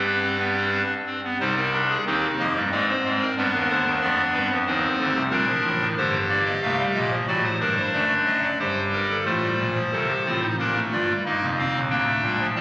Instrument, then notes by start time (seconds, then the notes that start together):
pipe organ
Already playing: G2 G3 G4 B4
0.06 D4
0.23 C4
0.39 B3
0.56 C4
0.73 D4
1.06 C4
1.24 B3
1.40 C2 C3 G3 D#4 C5
1.57 A#4
1.74 D4
1.90 G#4
2.06 D#2 D#3 C4 D#4 G4
2.39 F2 F3 A#3 D#5
2.55 G2 G3
2.71 G#2 G#3 C4 D5
2.89 C5
3.05 G#2 G#3
3.21 A#4
3.37 G2 G3 B3 D4 B4
3.53 D#2 D#3
3.69 D2 D3 C5
3.86 D#2 D#3
4.02 F2 F3 B3 D5
4.34 G2 G3 B4
4.50 F2 F3
4.66 D#2 D#3 C4 D#4 C5
4.99 D2 D3
5.15 C2 C3
5.31 A#1 A#2 G3 D4 A#4
5.48 F3
5.64 A1 A2
5.81 D#3
5.97 G1 G2 D3 G4 C5
6.29 A#3 D5
6.45 D#5
6.62 C2 C3 A3 F5
6.79 G3
6.94 A#1 A#2 D#5
7.11 F3
7.27 A1 A2 F#3 F#4 D5
7.43 C5
7.60 G1 G2 G3 D4 A#4
7.77 C5
7.93 F#1 F#2 A3 D5
8.26 F#3 D#5
8.43 D5
8.59 G1 G2 G3 G4 C5
8.93 A#4
9.10 A4
9.25 A1 A2 A3 F4 C5
9.43 G3
9.58 A#1 A#2
9.75 F3
9.92 C2 C3 D#3 A4
10.08 G4
10.26 A1 A2 C4 F4
10.41 D#4
10.59 A#1 A#2 A#3 D4 A#4
10.76 A3
10.92 G1 G2 F4 D5
11.09 G3
11.25 G1 G2 A#3 D#4 D#5
11.42 F1 F2
11.59 C4 F5
11.75 D#1 D#2
11.90 D1 D2 A#3 D4 G5
12.07 A3
12.23 A#1 A#2 G3
12.40 F3
12.56 A1 A2 G3 C4 A5